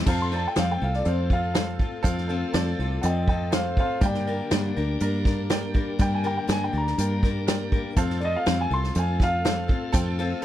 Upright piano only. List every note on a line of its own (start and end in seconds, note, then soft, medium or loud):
0.06 0.27 A4 medium
0.06 0.27 C5 medium
0.06 0.28 F5 loud
0.32 0.52 A4 medium
0.32 0.52 C5 medium
0.32 0.53 D5 medium
0.56 0.97 A4 medium
0.56 0.97 C5 medium
0.56 0.98 F5 medium
1.05 1.46 A4 medium
1.05 1.46 C5 medium
1.05 1.47 F5 medium
1.54 1.95 A4 medium
1.54 1.95 C5 medium
1.54 1.96 F5 medium
2.03 2.24 A4 loud
2.03 2.24 C5 loud
2.03 2.25 F5 loud
2.28 2.49 A4 medium
2.28 2.49 C5 medium
2.28 2.49 F5 medium
2.53 2.94 A4 medium
2.53 2.94 C5 medium
2.53 2.94 D5 loud
3.01 3.43 A4 medium
3.01 3.43 C5 medium
3.01 3.44 D5 medium
3.51 3.92 A4 medium
3.51 3.92 C5 medium
3.51 3.93 F5 medium
4.01 4.22 A#4 medium
4.01 4.22 D5 medium
4.01 4.23 G5 loud
4.26 4.47 A#4 medium
4.26 4.47 D5 medium
4.26 4.47 G5 medium
4.51 4.92 A#4 medium
4.51 4.92 D5 medium
4.51 4.92 G5 medium
5.01 5.41 A#4 medium
5.01 5.42 D5 medium
5.01 5.42 A#5 medium
5.50 5.91 A#4 medium
5.50 5.91 D5 medium
5.50 5.91 G5 medium
5.99 6.20 A#4 loud
5.99 6.20 D5 medium
5.99 6.21 G5 loud
6.24 6.44 A#4 medium
6.24 6.44 D5 medium
6.24 6.45 A#5 medium
6.48 6.89 A#4 medium
6.48 6.90 D5 medium
6.48 6.90 G5 medium
6.98 7.39 A#4 medium
6.98 7.39 D5 medium
6.98 7.39 G5 medium
7.47 7.88 A#4 medium
7.47 7.88 D5 medium
7.47 7.89 G5 medium
7.97 8.17 A4 loud
7.97 8.17 C5 loud
7.97 8.18 F5 loud
8.23 8.42 A4 medium
8.23 8.43 C5 medium
8.23 8.43 F5 medium
8.46 8.87 A4 medium
8.46 8.87 C5 medium
8.46 8.87 F5 medium
8.96 9.36 A4 medium
8.96 9.36 C5 medium
8.96 9.37 F5 medium
9.45 9.85 A4 medium
9.45 9.86 C5 medium
9.45 9.86 F5 medium
9.92 10.13 A4 loud
9.92 10.14 C5 loud
9.92 10.14 G5 loud
10.19 10.39 A4 medium
10.19 10.40 C5 medium
10.19 10.40 F5 medium